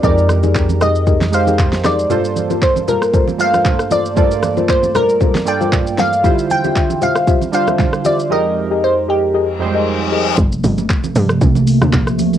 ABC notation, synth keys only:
X:1
M:4/4
L:1/8
Q:"Swing 16ths" 1/4=116
K:Gm
V:1 name="Synth keys"
[G,_A,EGB]3 z2 [A,EGc]2 z | [G,,B,FAc]3 z2 [G,,A,B,FAc]2 z | [G,,A,B,FAd]3 z2 [G,,B,FAd]2 z | [D,G,=EFc]3 z2 [D,G,DFc]2 z |
[F,,_A,EGB]3 z2 [F,,G,A,EGc]2 z | z8 |]